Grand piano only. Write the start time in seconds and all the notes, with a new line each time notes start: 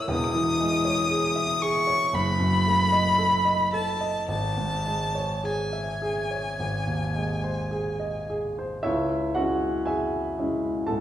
Already playing: E3 A#3 A#4 C#5 E5
0.08 E1 E2
0.35 E3
0.60 G#3
0.85 C#5
1.10 G#4
1.36 E5
1.62 G#4
1.87 C#5
2.13 F#1
2.40 F#2
2.67 A3
2.92 D#5
3.18 A4
3.45 D#5
3.73 A4
4.01 D#5
4.28 G#1
4.57 G#2
4.85 G#3
5.15 C#5
5.44 G#4
5.73 E5
6.02 G#4
6.31 C#5
6.60 G#1
6.87 D#2
7.15 G#3
7.44 C5
7.71 G#4
8.00 D#5
8.30 G#4
8.59 C5
8.83 C#2 E4 C#5 E5
9.35 G#3 C#4 E4 F#4 F#5
9.86 G#4 E5 G#5
10.39 G#3 C#4 E4
10.87 G#2 A4 A5